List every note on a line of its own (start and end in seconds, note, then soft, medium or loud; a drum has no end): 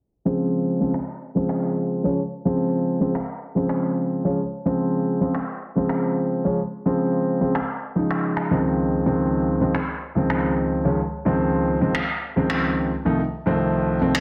0.25 0.77 C#3 medium
0.25 0.77 F3 medium
0.25 0.77 G#3 medium
0.25 0.78 C4 medium
0.80 0.94 C#3 medium
0.80 0.95 F3 medium
0.80 0.95 G#3 medium
0.80 0.95 C4 medium
0.94 finger snap medium
1.35 2.01 C#3 medium
1.35 2.01 F3 medium
1.35 2.01 G#3 medium
1.35 2.02 C4 medium
1.49 finger snap medium
2.03 2.18 C#3 medium
2.03 2.18 F3 medium
2.03 2.18 G#3 medium
2.03 2.18 C#4 medium
2.45 2.97 C#3 medium
2.45 2.97 F3 medium
2.45 2.97 G#3 medium
2.45 2.98 C4 medium
3.00 3.14 C#3 medium
3.00 3.15 F3 medium
3.00 3.15 G#3 medium
3.00 3.15 C4 medium
3.15 finger snap medium
3.55 4.21 C#3 medium
3.55 4.21 F3 medium
3.55 4.21 G#3 medium
3.55 4.22 C4 medium
3.69 finger snap medium
4.24 4.38 C#3 medium
4.24 4.39 F3 medium
4.24 4.39 G#3 medium
4.24 4.39 C#4 medium
4.65 5.17 C#3 medium
4.65 5.17 F3 medium
4.65 5.18 G#3 medium
4.65 5.18 C4 medium
5.21 5.35 C#3 medium
5.21 5.35 F3 medium
5.21 5.35 G#3 medium
5.21 5.35 C4 medium
5.35 finger snap medium
5.75 6.41 C#3 medium
5.75 6.42 F3 medium
5.75 6.42 G#3 medium
5.75 6.42 C4 medium
5.89 finger snap medium
6.44 6.58 C#3 medium
6.44 6.59 F3 medium
6.44 6.59 G#3 medium
6.44 6.59 C#4 medium
6.85 7.37 C#3 medium
6.85 7.38 F3 medium
6.85 7.38 G#3 medium
6.85 7.38 C4 medium
7.40 7.55 C#3 medium
7.40 7.55 F3 medium
7.40 7.55 G#3 medium
7.40 7.55 C4 medium
7.55 finger snap medium
7.95 8.47 C#3 medium
7.95 8.48 F3 medium
7.95 8.48 G#3 medium
7.95 8.48 D#4 medium
8.11 finger snap medium
8.37 finger snap medium
8.50 9.03 C#2 medium
8.50 9.03 D#3 medium
8.50 9.03 F3 medium
8.50 9.03 G#3 medium
8.50 9.03 C4 medium
9.06 9.58 C#2 medium
9.06 9.58 D#3 medium
9.06 9.58 F3 medium
9.06 9.58 G#3 medium
9.06 9.58 C4 medium
9.60 9.75 C#2 medium
9.60 9.75 D#3 medium
9.60 9.75 F3 medium
9.60 9.75 G#3 medium
9.60 9.75 C4 medium
9.75 finger snap medium
10.15 10.81 C#2 medium
10.15 10.82 D#3 medium
10.15 10.82 F3 medium
10.15 10.82 G#3 medium
10.15 10.82 C4 medium
10.30 finger snap medium
10.85 10.99 C#2 medium
10.85 10.99 D#3 medium
10.85 10.99 F3 medium
10.85 10.99 G#3 medium
10.85 10.99 C#4 medium
11.25 11.78 C#2 medium
11.25 11.78 D#3 medium
11.25 11.78 F3 medium
11.25 11.78 G#3 medium
11.25 11.78 C4 loud
11.81 11.95 C#2 medium
11.81 11.95 D#3 medium
11.81 11.95 F3 medium
11.81 11.95 G#3 medium
11.81 11.96 C4 medium
11.95 finger snap medium
12.36 12.90 C#2 medium
12.36 12.90 D#3 medium
12.36 12.90 F3 medium
12.36 12.90 G#3 medium
12.36 12.90 C4 medium
12.50 finger snap medium
13.05 13.19 C2 medium
13.05 13.19 D#3 medium
13.05 13.19 F3 medium
13.05 13.19 A3 medium
13.05 13.20 D#4 medium
13.46 13.98 C2 medium
13.46 13.98 D#3 medium
13.46 13.98 F3 medium
13.46 13.98 A3 medium
13.46 13.98 C4 loud
14.01 14.15 C2 medium
14.01 14.16 D#3 medium
14.01 14.16 F3 medium
14.01 14.16 A3 medium
14.01 14.16 C4 medium
14.15 finger snap medium